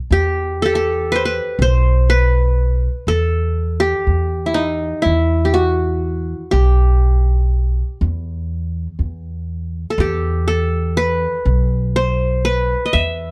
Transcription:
0.11 E2 G4
0.62 G4 A4
0.75 A4
1.12 B4 C5
1.25 B4
1.59 B1 C5
2.10 B4
3.07 E2 A4
3.80 G4
4.07 E2
4.46 E4
4.54 D#4
5.02 E2 E4
5.45 G4
5.54 F#4
6.51 B1 G4
8.01 E2
8.99 E2
9.90 A4
9.98 E2 G4
10.48 A4
10.97 B4
11.45 B1
11.96 C5
12.45 B4
12.86 D#5
12.93 E2 E5

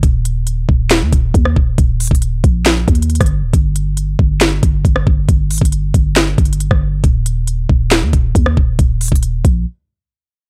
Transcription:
0.03 D#1, kick, closed hi-hat
0.25 closed hi-hat
0.47 closed hi-hat
0.69 D#1, kick
0.90 snare, clap, closed hi-hat
1.02 D#2
1.13 D#1, kick, closed hi-hat
1.34 D#2, kick, closed hi-hat
1.45 cross-stick
1.56 D#1, kick
1.78 D#1, kick, closed hi-hat
2.00 closed hi-hat, open hi-hat
2.07 D#1, kick, closed hi-hat
2.15 closed hi-hat
2.22 closed hi-hat
2.44 A#1, kick, closed hi-hat
2.65 snare, clap, closed hi-hat
2.88 D#2, kick, closed hi-hat
2.95 closed hi-hat
3.02 closed hi-hat
3.10 closed hi-hat
3.15 closed hi-hat
3.21 G1, kick, cross-stick, closed hi-hat
3.26 closed hi-hat
3.43 D1
3.53 G1, kick, closed hi-hat
3.76 closed hi-hat
3.97 closed hi-hat
4.19 G1, kick
4.41 snare, clap, closed hi-hat
4.63 G1, kick, closed hi-hat
4.85 G1, kick, closed hi-hat
4.96 cross-stick
5.07 G1, kick
5.29 G1, kick, closed hi-hat
5.51 G#1, closed hi-hat, open hi-hat
5.58 G1, kick, closed hi-hat
5.65 closed hi-hat
5.72 closed hi-hat
5.94 G1, kick, closed hi-hat
6.16 snare, clap, closed hi-hat
6.38 G1, kick, closed hi-hat
6.45 closed hi-hat
6.53 closed hi-hat
6.60 closed hi-hat
6.71 G1, kick, cross-stick
7.04 D#1, kick, closed hi-hat
7.26 closed hi-hat
7.47 closed hi-hat
7.69 D#1, kick
7.91 snare, clap, closed hi-hat
8.02 D#2
8.13 D#1, kick, closed hi-hat
8.35 D#2, kick, closed hi-hat
8.46 cross-stick
8.57 D#1, kick
8.79 D#1, kick, closed hi-hat
9.01 closed hi-hat, open hi-hat
9.08 D#1, kick, closed hi-hat
9.15 closed hi-hat
9.23 closed hi-hat
9.45 A#1, kick, closed hi-hat

